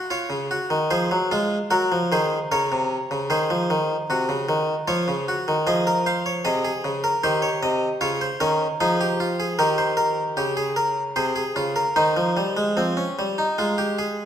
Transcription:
Already playing: F#4
0.10 F4 C#5
0.30 C#3
0.51 F#4
0.70 D#3
0.91 F3 G#4 C5
1.11 F#3
1.31 G#3 F4
1.71 F#3 F#4 A#4
1.92 F3
2.12 D#3 G#4 C5
2.52 C#3 A#4 C#5
2.72 C3
3.11 C#3
3.30 D#3 G#4 C5
3.50 F3
3.70 D#3
4.10 C3 F#4
4.29 C#3
4.49 D#3
4.88 F3 F4 C#5
5.08 C#3
5.28 F#4
5.48 D#3
5.67 F3 G#4 D#5
5.87 A#4
6.06 C5 F5
6.26 C#5
6.45 C3 G#4 D#5
6.65 G#4
6.84 C#3
7.04 A#4
7.24 D#3 G4 C5
7.42 C#5
7.63 C3 D#5
8.01 C#3 F4 C#5
8.21 C5
8.40 D#3 C#4 A#4
8.80 F3 D#4 G#4
9.01 G4
9.20 F4
9.40 G#4
9.59 D#3 G4 A#4
9.78 C5
9.97 A#4
10.37 C#3 G4
10.57 G#4
10.76 A#4
11.16 C3 G#4 C5
11.36 G#4
11.56 C#3 F4
11.76 A#4
11.96 D#3 D#4 C5
12.17 F3
12.37 G3
12.57 G#3
12.77 F3 C4
12.97 C#4
13.19 G3
13.38 D#4
13.58 G#3 F4
13.78 G4
13.99 G#4

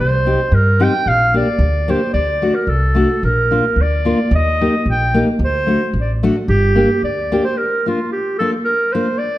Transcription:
0.00 C2 C5
0.26 C4 D#4 G4
0.52 G2 A#4
0.80 C4 D#4 G4 G5
1.06 A#1 F5
1.34 A#3 D4 G4 D5
1.59 D2
1.88 A#3 D4 G4 C5
2.14 D2 D5
2.42 A3 D4 F#4
2.55 A#4
2.67 C2 A4
2.95 A3 D4 F#4
3.23 A#1 A#4
3.51 A#3 D4 F4
3.76 D2
3.81 D5
4.05 A#3 D4 F4
4.31 D#2
4.35 D#5
4.61 A#3 D#4 G4
4.86 A#1
4.90 G5
5.14 A#3 D#4 G4
5.39 D2
5.45 C5
5.67 A3 D4 F#4
5.93 A1
6.01 D5
6.23 A3 D4 F#4
6.48 G1 G4
6.75 A#3 D4 G4
7.02 D2 D5
7.32 A#3 D4 G4
7.45 C5
7.57 A#4
7.86 A#3 D4 F4
8.12 G4
8.39 A#3 D4 F4 A4
8.65 A#4
8.92 A#3 D4 F4 C5
9.18 D5

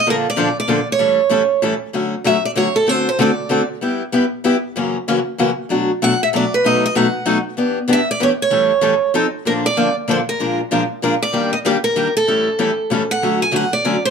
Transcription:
0.06 A#2 D3 F3 A#3 D4 A4 A#4
0.30 D5
0.36 A#2 D3 F3 A#3 D4 A4
0.60 D5
0.68 A#2 D3 F3 A#3 D4 A4
0.92 C#5
0.98 A2 E3 G3 C#4 E4 A4
1.29 A2 E3 G3 C#4 E4 A4
1.62 A2 E3 G3 C#4 E4 A4
1.93 D3 F#3 A3 C#4 F#4
2.24 D3 F#3 A3 C#4 F#4 E5
2.45 D5
2.55 D3 F#3 A3 C#4 F#4 C#5
2.76 A4
2.87 D3 A3 C4 F#4 A4 C5
3.09 C5
3.19 D3 A3 C4 F#4 A4 D5
3.49 D3 A3 C4 F#4 A4
3.81 G3 B3 E4 G4
4.12 G3 B3 E4 G4
4.44 G3 B3 E4 G4
4.76 F#2 C#3 E3 A#3 C#4 F#4
5.08 F#2 C#3 E3 A#3 C#4 F#4
5.38 F#2 C#3 E3 A#3 C#4 F#4
5.69 B2 F#3 A3 D4 F#4
6.02 B2 F#3 A3 D4 F#4 F#5
6.23 E5
6.33 B2 F#3 A3 D4 F#4 D5
6.54 B4
6.64 B2 F#3 A3 D#4 F#4 D#5
6.86 D#5
6.95 B2 F#3 A3 D#4 F#4 F#5
7.26 B2 F#3 A3 D#4 F#4
7.57 E3 B3 D4 G4
7.88 E3 B3 D4 G4
7.93 E5
8.11 D5
8.20 E3 B3 D4 G4 C#5
8.42 C#5
8.50 A2 E3 G3 C#4 E4 A4
8.81 A2 E3 G3 C#4 E4 A4
9.14 F3 C4 D#4 A4
9.45 A#2 D3 F3 A#3 D4 A4 A#4
9.66 D5
9.77 A#2 D3 F3 A#3 D4 A4
10.08 A#2 D3 F3 A#3 D4 A4 C5
10.29 A#4
10.40 A#2 F3 G#3 D4 F4 A#4
10.71 A#2 F3 G#3 D4 F4 A#4
11.02 A#2 F3 G#3 D4 F4 A#4
11.22 D5
11.33 D#3 G3 A#3 D4 G4
11.53 D#5
11.65 D#3 G3 A#3 D4 G4 D5
11.84 A#4
11.96 D#3 G3 A#3 D4 G4
12.17 A4
12.27 A2 E3 G3 C#4 E4 A4
12.59 A2 E3 G3 C#4 E4 A4
12.90 A2 E3 G3 C#4 E4 A4
13.11 F#5
13.22 D3 F#3 A3 C#4 F#4
13.42 G#5
13.52 D3 F#3 A3 C#4 F#4
13.56 F#5
13.73 D5
13.85 D3 F#3 A3 C#4 F#4
14.05 C5

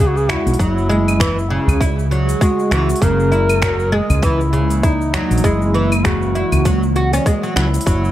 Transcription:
Already playing: C#2 C#3 G#3 F#4
0.00 C#3 G#4, shaker
0.07 F#4
0.17 G#4, shaker
0.29 E4 F#4, finger snap, open hi-hat, udu
0.47 B1, open hi-hat, shaker
0.54 open hi-hat
0.59 F#1 F#3 E4 G#4, kick, open hi-hat, shaker
0.78 shaker
0.89 G#3, open hi-hat
1.08 open hi-hat, claves, shaker
1.20 E3, finger snap, kick, open hi-hat, udu, shaker
1.39 shaker
1.50 C#3
1.67 C#2, open hi-hat, udu, claves, shaker
1.81 E4, kick, open hi-hat, shaker
1.99 shaker
2.11 F#3, open hi-hat
2.29 open hi-hat, shaker
2.41 G#3 F#4, kick, open hi-hat, shaker
2.59 shaker
2.71 C#2 E3, finger snap, open hi-hat
2.89 open hi-hat, shaker
2.96 open hi-hat
3.01 F#1 C#3 E3 G#3 A#3 A#4, kick, open hi-hat, shaker
3.20 shaker
3.32 E4, open hi-hat
3.49 open hi-hat, claves, shaker
3.62 F#3, finger snap, kick, open hi-hat, udu, shaker
3.80 shaker
3.92 G#3 G#4
4.10 C#2, open hi-hat, udu, claves, shaker
4.22 E3 E4, kick, open hi-hat, shaker
4.41 shaker
4.53 C#3, open hi-hat
4.70 open hi-hat, shaker
4.83 D#4 E4, kick, open hi-hat, shaker
5.01 shaker
5.14 F#3 D#4, finger snap, open hi-hat, udu
5.31 A#1, open hi-hat, shaker
5.38 open hi-hat
5.44 F#1 G#3 E4, kick, open hi-hat, shaker
5.62 shaker
5.74 E3, open hi-hat
5.92 open hi-hat, claves, shaker
6.05 C#3 F#4, finger snap, kick, open hi-hat, udu, shaker
6.22 shaker
6.35 E4, open hi-hat
6.52 C#2, open hi-hat, udu, claves, shaker
6.65 F#3, kick, open hi-hat, shaker
6.83 shaker
6.96 F#4, open hi-hat
7.13 C#4, open hi-hat, shaker
7.26 G#3, kick, open hi-hat, shaker
7.43 F#3, shaker
7.56 C#2 F#3 E4, finger snap, open hi-hat
7.74 open hi-hat, shaker
7.81 open hi-hat
7.86 F#1 C#3 E3 F#3 G#3 F#4 E6, kick, open hi-hat, shaker
8.05 shaker

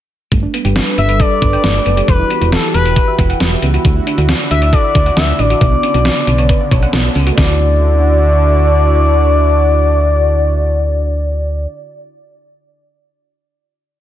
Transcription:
0.32 G1 G3 A3 D4 A4 B4, kick, closed hi-hat
0.43 D4
0.54 B3, closed hi-hat
0.65 G1 G4, closed hi-hat
0.76 D4, snare, closed hi-hat
0.98 G1 E5, closed hi-hat
1.09 B4, closed hi-hat
1.20 A4 D5, kick, closed hi-hat
1.31 D5
1.42 G1 B4, kick, closed hi-hat
1.53 G5, closed hi-hat
1.64 G1 A3, snare, closed hi-hat
1.86 F#1 B3, closed hi-hat
1.97 G4, closed hi-hat
2.08 E1 E3 G3 E4 F#4 G4 B4, kick, closed hi-hat
2.19 E4
2.30 B3, closed hi-hat
2.41 E1 F#4, closed hi-hat
2.52 E4 A4, snare, closed hi-hat
2.74 E1 B4, closed hi-hat
2.85 B4, closed hi-hat
2.96 G4, kick, closed hi-hat
3.08 E5
3.19 E1 B4, kick, closed hi-hat
3.30 F#5, closed hi-hat
3.40 E1 G3, snare, closed hi-hat
3.62 C#2 B3, closed hi-hat
3.74 F#4, closed hi-hat
3.85 D2 D3 A3 D4, kick, closed hi-hat
3.96 E4
4.07 D4, closed hi-hat
4.18 D2 F#4, closed hi-hat
4.29 E4, snare, closed hi-hat
4.51 D2 E5, closed hi-hat
4.62 D5, closed hi-hat
4.66 E5
4.73 A4 D5, kick, closed hi-hat
4.84 E5
4.95 D2 D5, kick, closed hi-hat
5.06 F#5, closed hi-hat
5.17 D2 A3 E5, snare, closed hi-hat
5.39 A1 D4 D5, closed hi-hat
5.50 F#4, closed hi-hat
5.61 B1 C#3 B3, kick, closed hi-hat
5.72 D4
5.83 C#4, closed hi-hat
5.94 B1 F#4, closed hi-hat
6.05 D4, snare, closed hi-hat
6.27 B1, closed hi-hat
6.38 C#5, closed hi-hat
6.49 B4, kick, closed hi-hat
6.61 D5
6.71 B1 C#5, kick, closed hi-hat
6.82 F#5, closed hi-hat
6.93 B1 B3, snare, closed hi-hat
7.15 C#2 C#4, open hi-hat
7.27 F#4, closed hi-hat
7.32 A3 D4
7.38 D2 D3 D4 E4 F#4 D5, kick, snare, open hi-hat
7.44 F#4

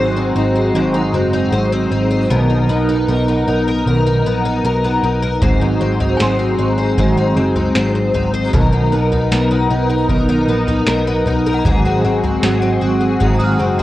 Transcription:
Already playing: G#1 G#2 F#3 G#3 C4 D#4 F#4 C5
0.00 D#4 C5
0.16 C4
0.35 G#1 F#3 C4 D#4 C5
0.56 C5
0.74 G#1 G#2 D#3 F#3 C4 D#4 C5
0.94 D#4
1.13 F#1 F#3 C4 D#4 C5
1.33 D#4
1.52 G#1 F#3 C4 D#4 C5
1.72 C4
1.91 G#1 F#3 C4 D#4 C5
2.11 C5
2.30 B1 B2 D#3 F#3 B3 D#4 A#4
2.50 D#4
2.69 B1 F#3 B3 D#4 A#4
2.89 D#4
3.08 B1 F#3 B3 D#4 A#4
3.28 B3
3.46 B1 F#3 B3 D#4 A#4
3.67 A#4
3.85 B1 B2 D#3 F#3 B3 D#4 A#4
4.06 D#4
4.24 A#1 F#3 B3 D#4 A#4
4.45 D#4
4.63 B1 F#3 B3 D#4 A#4
4.84 B3
5.02 B1 F#3 B3 D#4 A#4
5.22 A#4
5.41 G#1 G#2 D#3 F#3 G#3 C4 F#4 G#4 C5, kick, floor tom
5.61 D#4
5.80 G#1 F#3 C4 F#4 G#4
6.00 D#4, floor tom
6.17 G#1 F#3 C4 C5 G#5, snare
6.22 F#4 G#4 C6
6.39 C4
6.58 G#1 F#3 C4 D#4 F#4 G#4
6.78 C5
6.97 G#1 G#2 D#3 F#3 C4 F#4 G#4 C5, kick
7.17 D#4
7.36 F#1 F#3 C4 F#4 G#4
7.56 D#4, floor tom
7.75 G#1 F#3 C4 F#4 G#4 C5, snare
7.95 C4
8.14 G#1 F#3 C4 D#4 F#4 G#4, floor tom
8.34 C5
8.53 B1 B2 D#3 F#3 B3 D#4 A#4, kick, floor tom
8.72 D#4
8.92 B1 F#3 B3 D#4 A#4
9.11 D#4, floor tom
9.31 B1 F#3 B3 D#4 A#4, snare
9.50 B3
9.70 B1 F#3 B3 D#4 A#4
9.90 A#4
10.09 B1 B2 D#3 F#3 B3 D#4 A#4, kick
10.29 D#4
10.47 A#1 F#3 B3 D#4 A#4
10.67 D#4, floor tom
10.86 B1 F#3 B3 D#4 A#4, snare
11.07 B3
11.25 B1 F#3 B3 D#4 A#4, floor tom
11.46 A#4
11.54 F#5
11.59 A#5
11.64 G#1 G#2 D#3 F#3 G#3 C4 F#4 G#4, kick, floor tom
11.85 F#4
12.03 G#1 F#3 C4 F#4 G#4
12.23 F#4, floor tom
12.42 G#1 F#3 C4 F#4 G#4, snare
12.62 C4
12.81 G#1 F#3 C4 F#4 G#4
13.01 G#4
13.20 G#1 G#2 D#3 F#3 C4 F#4 G#4, kick
13.34 A#5
13.39 F#4 D#6
13.44 F6
13.59 F#1 F#3 C4 F#4 G#4
13.79 F#4, floor tom

